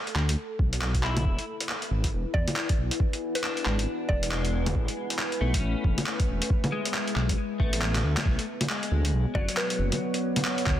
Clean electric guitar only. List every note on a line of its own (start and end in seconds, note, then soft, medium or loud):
1.03 1.44 E4 medium
3.44 4.64 D4 medium
4.31 4.93 G#3 medium
5.41 6.61 A3 medium
5.60 6.72 C#4 medium
6.72 7.92 G#3 medium
7.60 8.43 A3 medium
8.69 9.89 G#3 medium
9.35 10.55 F#3 medium